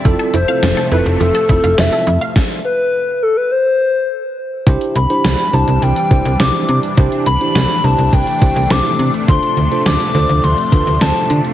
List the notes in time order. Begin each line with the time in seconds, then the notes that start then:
Already playing: E5
0.05 F1 C3 F3 A3 C4 E4 F4 A4, kick, closed hi-hat
0.19 A4, closed hi-hat
0.34 F1 E4 C5, closed hi-hat
0.48 C4 E4 F4 A4 F5, closed hi-hat
0.63 F1 F3, snare, closed hi-hat
0.77 A4, closed hi-hat
0.91 F1 C4 E4 F4 A4 B4, open hi-hat
1.06 F1, closed hi-hat
1.20 F1 F3 A4, closed hi-hat
1.35 A4, closed hi-hat
1.49 F1 C4 E4 F4 A4, kick, closed hi-hat
1.64 F1 F5, closed hi-hat
1.78 F1 F3 C4 E4 F4 A4 E5, snare, closed hi-hat
1.93 A4, closed hi-hat
2.07 F2 E4, closed hi-hat
2.21 F5, closed hi-hat
2.36 kick, snare
2.65 B4
3.23 A4
3.37 B4
3.51 C5
4.67 C2 C3 E3 G3 D4 E4 G4 C5, kick, closed hi-hat
4.81 closed hi-hat
4.95 C2 B5, closed hi-hat
5.10 D4 E4 G4 C5, closed hi-hat
5.24 C2, snare, closed hi-hat
5.39 closed hi-hat
5.53 C2 D4 E4 G4 C5 A5, open hi-hat
5.68 C2, closed hi-hat
5.82 C2 G5, closed hi-hat
5.96 closed hi-hat
6.11 C2 D4 E4 G4 C5, kick, closed hi-hat
6.25 C2, closed hi-hat
6.40 C2 D4 E4 G4 C5 D6, snare, closed hi-hat
6.54 closed hi-hat
6.69 C3, closed hi-hat
6.83 closed hi-hat
6.97 C2 A3 D4 E4 G4 C5, kick, closed hi-hat
7.12 closed hi-hat
7.26 C2 B5, closed hi-hat
7.41 D4 E4 G4 C5, closed hi-hat
7.55 C2, snare, closed hi-hat
7.70 closed hi-hat
7.84 C2 D4 E4 G4 C5 A5, open hi-hat
7.98 C2, closed hi-hat
8.13 C2 G5, kick, closed hi-hat
8.27 closed hi-hat
8.42 C2 D4 E4 G4 C5, kick, closed hi-hat
8.56 C2, closed hi-hat
8.70 C2 D4 E4 G4 C5 D6, snare, closed hi-hat
8.85 closed hi-hat
8.99 C3, closed hi-hat
9.14 closed hi-hat
9.28 D2 F3 D4 F4 A4 C5 C6, kick, closed hi-hat
9.43 closed hi-hat
9.57 D2, closed hi-hat
9.71 D4 F4 A4 C5, closed hi-hat
9.86 D2 D6, snare, closed hi-hat
10.00 closed hi-hat
10.15 D2 D4 F4 A4 C5, open hi-hat
10.29 D2, closed hi-hat
10.44 D2 C6, closed hi-hat
10.58 closed hi-hat
10.72 D2 D4 F4 A4 B4, kick, closed hi-hat
10.87 D2, closed hi-hat
11.01 D2 D4 F4 A4 C5 A5, snare, closed hi-hat
11.16 closed hi-hat
11.30 D3, closed hi-hat
11.45 closed hi-hat